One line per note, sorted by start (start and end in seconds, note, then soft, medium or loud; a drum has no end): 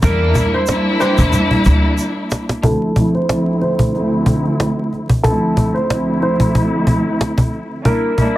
0.01 0.32 E2 loud
0.01 0.62 G3 loud
0.01 0.63 A#3 medium
0.01 0.63 D4 medium
0.01 0.63 E4 loud
0.01 0.50 A#4 loud
0.01 cajon bass loud
0.01 shaker medium
0.35 cajon bass medium
0.35 shaker medium
0.54 0.98 C5 medium
0.54 cajon slap soft
0.67 2.49 G3 loud
0.67 2.49 A#3 medium
0.67 2.50 D4 loud
0.67 2.50 E4 loud
0.67 cajon slap loud
0.67 shaker medium
1.00 1.22 E3 loud
1.00 1.22 D4 medium
1.00 1.22 G4 loud
1.00 1.48 C5 medium
1.00 cajon slap soft
1.00 shaker medium
1.18 1.31 E2 medium
1.18 cajon bass medium
1.18 shaker medium
1.33 cajon bass medium
1.33 cajon slap soft
1.33 shaker medium
1.51 cajon bass medium
1.65 1.95 D2 medium
1.65 cajon bass medium
1.65 shaker soft
1.85 cajon slap soft
1.98 cajon slap soft
1.98 shaker medium
2.31 cajon slap loud
2.31 shaker medium
2.49 cajon slap medium
2.62 2.93 D2 loud
2.62 2.93 F3 medium
2.62 2.93 A3 medium
2.62 2.94 C4 medium
2.62 2.94 E4 loud
2.62 3.11 A4 medium
2.62 cajon bass loud
2.95 3.26 D2 medium
2.95 3.26 F3 medium
2.95 3.26 A3 medium
2.95 3.26 C4 medium
2.95 3.26 E4 loud
2.95 cajon bass medium
3.15 3.59 C5 medium
3.15 cajon slap soft
3.29 3.89 D2 medium
3.29 3.89 F3 medium
3.29 3.90 A3 medium
3.29 3.90 C4 medium
3.29 3.90 E4 loud
3.29 cajon slap loud
3.61 4.09 C5 medium
3.61 cajon slap soft
3.79 cajon bass medium
3.94 5.00 D2 loud
3.94 5.00 F3 medium
3.94 5.00 A3 medium
3.94 5.00 C4 medium
3.94 5.01 E4 loud
3.94 cajon slap soft
4.26 cajon bass medium
4.45 cajon slap soft
4.60 cajon slap loud
4.93 cajon slap soft
5.10 cajon bass loud
5.23 5.85 D2 loud
5.23 5.85 F3 medium
5.23 5.85 A3 medium
5.23 5.86 C4 medium
5.23 5.86 E4 loud
5.23 5.71 A4 medium
5.23 cajon bass loud
5.57 cajon bass medium
5.74 6.19 C5 medium
5.74 cajon slap soft
5.90 7.71 D2 loud
5.90 7.71 F3 medium
5.90 7.72 A3 medium
5.90 7.72 C4 medium
5.90 7.72 E4 loud
5.90 cajon slap loud
6.22 6.70 C5 medium
6.22 cajon slap soft
6.40 cajon bass medium
6.55 cajon bass medium
6.87 cajon bass medium
7.21 cajon slap loud
7.38 cajon bass loud
7.54 cajon slap soft
7.84 8.15 G3 medium
7.84 8.15 A#3 medium
7.84 8.15 D4 medium
7.84 8.16 E4 loud
7.84 8.33 A#4 medium
7.84 cajon bass loud
8.17 8.38 G3 loud
8.17 8.38 A#3 medium
8.17 8.38 D4 medium
8.17 8.38 E4 loud
8.17 cajon bass medium